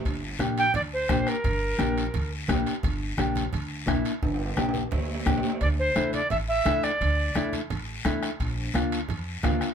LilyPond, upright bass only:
\new Staff \with { instrumentName = "Upright bass" } { \clef bass \time 4/4 \key g \dorian \tempo 4 = 172 g,,4 bes,,4 d,4 bes,,8 r8 | g,,4 bes,,4 d,4 bes,,8 r8 | g,,4 bes,,4 d,4 bes,,8 r8 | g,,4 bes,,4 d,4 bes,,8 r8 |
d,4 e,4 a,,4 e,8 r8 | d,4 e,4 a,,4 e,8 r8 | bes,,4 d,4 f,4 d,8 r8 | }